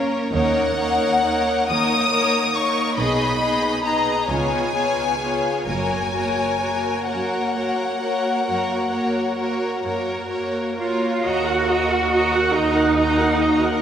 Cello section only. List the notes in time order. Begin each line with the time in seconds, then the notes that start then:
Already playing: F#2
0.33 D#2
1.70 D#2
2.99 B2
4.30 C#3
5.68 F#2
7.11 F#2
8.49 F#2
9.84 F#2
10.78 F4
11.25 F#4
12.55 D#4